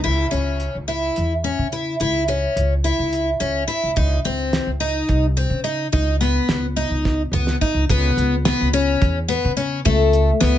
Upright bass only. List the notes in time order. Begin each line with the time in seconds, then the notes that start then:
0.05 C#2
0.33 C#2
0.75 C#2
1.17 E2
1.58 C#3
2.00 C#2
2.56 C#2
2.99 C#2
3.40 C#2
3.83 C#2
3.97 C#2
4.25 C#2
4.67 C#2
5.09 C2
5.50 C#3
5.93 C#2
6.48 C#2
6.90 C#2
7.31 C#2
7.74 C#2
7.90 C#2
8.17 C#2
8.61 C#2
9.02 E2
9.45 C#3
9.86 C#2
10.42 C#2